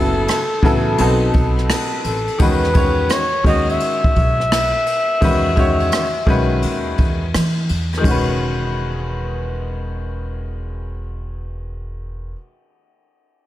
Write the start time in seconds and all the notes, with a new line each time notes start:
Already playing: F#1 C#3 F#3 B3 E4 A4
0.28 cross-stick, hi-hat pedal, ride
0.62 A1 C#3 F#3 B3 E4 A4, kick, ride
0.97 B1 F#3 B3 C4 D#4 A4, ride
1.33 B1, kick, ride
1.58 cross-stick
1.70 cross-stick, hi-hat pedal, ride
2.04 A1 A4, ride
2.27 ride
2.38 E2 D#3 G#3 C#4 F#4 B4, kick, ride
2.64 cross-stick
2.73 D#3 G#3 C#4 F#4 C#5, kick, ride
3.09 C#5, cross-stick, hi-hat pedal, ride
3.44 D#2 D#3 G#3 C#4 F#4 C#5 D#5, kick, ride
3.69 E5, ride
3.80 ride
4.04 kick
4.16 B1, kick, ride
4.40 cross-stick
4.52 cross-stick, hi-hat pedal, ride
4.86 ride
5.21 E2 D#3 G#3 C#4 F#4 B4, kick, ride
5.56 D#3 G#3 C#4 F#4 C#5, kick, ride
5.80 ride
5.92 cross-stick, hi-hat pedal, ride
6.26 B1 D#3 G#3 C#4 F#4 B4, kick, ride
6.62 D#2, ride
6.98 E2, kick, ride
7.34 E3, cross-stick, hi-hat pedal, ride
7.69 E2, ride
7.92 cross-stick, ride
7.97 D#3 G#3
8.04 E1 C#4 F#4, kick, ride
8.11 B4